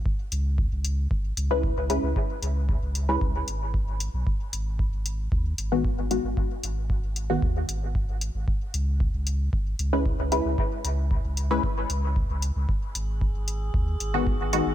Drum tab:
HH |-x-x-x-x|-x-x-x-x|-x-x-x-x|-x-x-x-x|
BD |o-o-o-o-|o-o-o-o-|o-o-o-o-|o-o-o-o-|

HH |-x-x-x-x|-x-x-x-x|-x-x-x-x|
BD |o-o-o-o-|o-o-o-o-|o-o-o-o-|